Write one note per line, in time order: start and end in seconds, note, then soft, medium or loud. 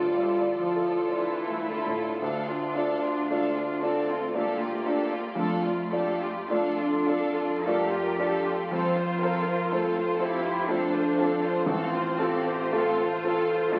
0.00 2.16 D2 soft
0.00 1.86 A2 soft
0.00 0.95 D3 soft
0.00 0.53 G3 soft
0.00 0.24 A3 soft
0.00 0.54 F4 soft
0.00 1.66 F4 soft
0.00 0.60 F4 soft
0.00 0.55 A4 soft
0.00 1.05 D5 medium
0.41 0.98 D5 soft
0.55 1.11 F3 soft
0.55 1.63 F4 soft
0.55 1.63 A4 soft
0.76 1.33 A4 soft
1.10 2.06 D3 soft
1.10 1.67 E3 soft
1.10 2.17 E4 medium
1.10 1.70 D5 soft
1.48 2.07 A3 soft
1.67 2.22 D3 soft
1.67 2.21 F4 soft
1.67 2.21 A4 soft
1.86 2.22 A2 soft
2.21 5.35 D2 soft
2.21 2.74 D2 soft
2.21 3.83 D4 medium
2.21 2.48 D4 soft
2.21 2.47 A4 soft
2.21 2.47 F5 soft
2.46 2.76 F4 soft
2.46 2.75 D5 soft
2.74 3.03 D4 soft
2.74 3.26 F4 soft
2.74 3.03 A4 soft
2.74 3.26 D5 soft
2.74 3.02 F5 soft
3.03 3.30 F4 soft
3.03 3.30 D5 soft
3.29 3.80 A3 soft
3.29 3.56 D4 soft
3.29 3.80 F4 soft
3.29 3.56 A4 soft
3.29 3.80 D5 soft
3.29 3.54 F5 soft
3.53 3.83 F4 soft
3.53 3.82 D5 soft
3.82 4.36 C4 medium
3.82 4.10 D4 soft
3.82 4.32 F4 soft
3.82 4.10 A4 soft
3.82 4.37 A4 soft
3.82 4.32 D5 soft
3.82 4.09 F5 soft
4.07 4.35 D5 soft
4.12 4.37 F4 soft
4.34 4.83 A3 soft
4.34 5.40 A#3 medium
4.34 4.61 D4 soft
4.34 4.83 F4 soft
4.34 5.40 G4 soft
4.34 4.61 A4 soft
4.34 4.83 D5 soft
4.34 4.59 F5 soft
4.60 4.87 F4 soft
4.60 4.88 D5 soft
4.86 5.13 D4 soft
4.86 5.34 F4 soft
4.86 5.13 A4 soft
4.86 5.35 D5 soft
4.86 5.13 F5 soft
5.13 5.39 F4 soft
5.13 5.40 D5 soft
5.35 5.91 F2 medium
5.35 11.69 F2 soft
5.35 5.64 D4 soft
5.35 5.64 A4 soft
5.39 6.49 A3 medium
5.39 5.94 F4 soft
5.39 5.65 F5 soft
5.64 5.93 F4 soft
5.64 5.94 D5 soft
5.93 6.23 D4 soft
5.93 6.47 F4 soft
5.93 6.51 G4 soft
5.93 6.22 A4 soft
5.93 6.46 D5 soft
5.93 6.23 F5 soft
6.22 6.51 F4 soft
6.22 6.51 D5 soft
6.49 7.05 A3 soft
6.49 7.67 D4 medium
6.49 6.78 D4 soft
6.49 7.05 F4 soft
6.49 6.78 A4 soft
6.49 7.67 A4 medium
6.49 7.05 D5 soft
6.49 6.76 F5 soft
6.79 7.09 F4 soft
6.79 7.09 D5 soft
7.07 7.37 D4 soft
7.07 7.62 F4 soft
7.07 7.37 A4 soft
7.07 7.63 D5 soft
7.07 7.39 F5 soft
7.36 7.66 F4 soft
7.36 7.67 D5 soft
7.64 8.16 A3 soft
7.64 7.91 D4 soft
7.64 8.16 F4 soft
7.64 8.72 G4 medium
7.64 7.91 A4 soft
7.64 8.20 A#4 medium
7.64 8.17 D5 soft
7.64 7.92 F5 soft
7.92 8.20 F4 soft
7.92 8.21 D5 soft
8.19 8.46 D4 soft
8.19 8.67 F4 soft
8.19 8.45 A4 soft
8.19 8.72 A4 medium
8.19 8.67 D5 soft
8.19 8.47 F5 soft
8.45 8.71 F4 soft
8.45 8.72 D5 soft
8.70 9.21 F2 medium
8.70 8.94 C4 medium
8.70 10.22 F4 medium
8.70 8.95 A4 soft
8.70 9.21 C5 medium
8.70 8.94 F5 soft
8.97 9.23 F4 soft
8.97 9.22 C5 soft
8.97 9.23 C5 soft
9.21 9.47 C4 soft
9.21 9.69 F4 soft
9.21 9.47 A4 soft
9.21 9.73 A#4 medium
9.21 9.69 C5 soft
9.21 9.48 F5 soft
9.48 9.73 F4 soft
9.48 9.73 C5 soft
9.71 10.17 A3 soft
9.71 9.95 C4 soft
9.71 10.18 F4 soft
9.71 9.95 A4 soft
9.71 10.22 A4 medium
9.71 10.18 C5 soft
9.71 9.95 F5 soft
9.96 10.22 F4 soft
9.96 10.21 C5 soft
9.96 10.22 C5 soft
10.18 10.44 C4 soft
10.18 10.69 E4 medium
10.18 10.65 F4 soft
10.18 10.44 A4 soft
10.18 10.65 C5 soft
10.18 10.46 F5 soft
10.23 10.71 G4 medium
10.43 10.69 F4 soft
10.43 10.69 C5 soft
10.69 11.15 A3 soft
10.69 10.93 C4 soft
10.69 11.69 D4 medium
10.69 11.15 F4 soft
10.69 10.92 A4 soft
10.69 11.69 A4 medium
10.69 11.15 C5 soft
10.69 10.93 F5 soft
10.93 11.20 F4 soft
10.93 11.19 C5 soft
11.18 11.44 C4 soft
11.18 11.65 F4 soft
11.18 11.44 A4 soft
11.18 11.65 C5 soft
11.18 11.44 F5 soft
11.43 11.69 F4 soft
11.43 11.69 C5 soft
11.66 12.19 A1 medium
11.66 13.79 A1 medium
11.66 12.73 C4 medium
11.66 11.93 C4 medium
11.66 12.22 F4 medium
11.66 11.93 A4 medium
11.66 11.93 F5 medium
11.94 12.22 F4 soft
11.94 12.21 C5 soft
11.94 12.22 C5 soft
12.19 12.49 C4 soft
12.19 12.70 F4 soft
12.19 12.75 G4 medium
12.19 12.71 A4 soft
12.19 12.49 A4 soft
12.19 12.48 F5 soft
12.46 12.76 F4 soft
12.46 12.74 C5 soft
12.46 12.76 C5 soft
12.72 13.20 A3 soft
12.72 13.00 C4 soft
12.72 13.21 F4 medium
12.72 13.72 F4 medium
12.72 13.21 A4 medium
12.72 12.99 A4 soft
12.72 13.26 A4 medium
12.72 12.99 F5 soft
13.01 13.26 F4 soft
13.01 13.26 C5 soft
13.24 13.69 F4 soft
13.24 13.70 A4 medium
13.24 13.74 A4 medium
13.24 13.51 F5 soft
13.28 13.51 C4 soft
13.28 13.51 A4 medium
13.50 13.74 F4 soft
13.50 13.74 C5 soft
13.50 13.75 C5 soft
13.72 13.79 A3 medium
13.72 13.79 C4 soft
13.72 13.79 D4 medium
13.72 13.79 F4 medium
13.72 13.79 G4 medium
13.72 13.79 A4 medium
13.72 13.79 F5 soft